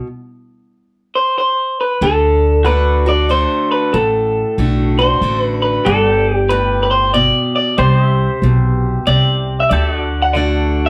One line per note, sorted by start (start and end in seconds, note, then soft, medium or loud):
1.15 1.36 C5 medium
1.38 1.80 C5 medium
1.81 2.03 B4 medium
2.01 3.45 D2 medium
2.01 2.64 D3 medium
2.01 2.68 A4 medium
2.65 3.05 D3 medium
2.65 3.06 A3 medium
2.65 3.06 D4 medium
2.65 5.83 F#4 medium
2.65 3.05 F#4 medium
2.65 5.83 A4 medium
2.65 3.08 B4 medium
2.65 5.84 D5 medium
3.06 3.29 D4 soft
3.06 3.28 F#4 medium
3.06 3.29 D5 medium
3.29 3.91 D3 medium
3.29 3.92 A3 medium
3.29 3.92 D4 medium
3.29 3.92 F#4 medium
3.29 3.71 C5 medium
3.71 3.95 B4 medium
3.93 4.42 A1 medium
3.93 5.18 A2 medium
3.93 4.54 A4 medium
4.58 5.13 B1 medium
4.58 4.98 D3 medium
4.58 4.98 A3 medium
4.58 4.99 D4 medium
4.58 4.98 F#4 medium
4.99 5.22 D4 soft
4.99 5.21 F#4 medium
4.99 5.42 C5 medium
5.21 5.76 A1 medium
5.21 5.84 D3 medium
5.21 5.84 A3 medium
5.21 5.85 D4 medium
5.21 5.85 F#4 medium
5.42 5.59 B4 medium
5.62 5.86 B4 medium
5.85 7.30 G1 medium
5.85 7.10 G2 medium
5.85 6.07 F#4 medium
5.85 6.36 A4 medium
5.85 7.78 D5 medium
6.07 7.77 G4 medium
6.36 6.52 G4 medium
6.49 7.12 A2 medium
6.49 6.82 B4 medium
6.83 6.91 B4 medium
6.91 7.13 C5 medium
7.14 7.76 B2 medium
7.14 7.54 D5 medium
7.56 7.78 D5 medium
7.78 8.26 C2 medium
7.78 9.02 C3 medium
7.78 9.69 G4 medium
7.78 8.39 C5 medium
7.78 9.69 C5 medium
7.78 8.05 D5 medium
8.05 9.70 E5 medium
8.42 8.97 B1 medium
8.42 9.05 B2 medium
9.07 9.62 C2 medium
9.07 9.69 C3 medium
9.07 9.60 D5 medium
9.60 9.69 E5 medium
9.69 10.89 D2 medium
9.69 10.33 D3 medium
9.69 9.93 G4 medium
9.69 10.89 A4 medium
9.69 10.22 D5 medium
9.75 10.00 E5 medium
9.93 10.89 F#4 medium
10.00 10.89 D5 medium
10.22 10.35 F#5 medium
10.33 10.89 D3 medium
10.33 10.89 A3 soft
10.33 10.89 D4 medium
10.33 10.89 F#4 medium
10.33 10.89 D5 medium
10.86 10.89 E5 medium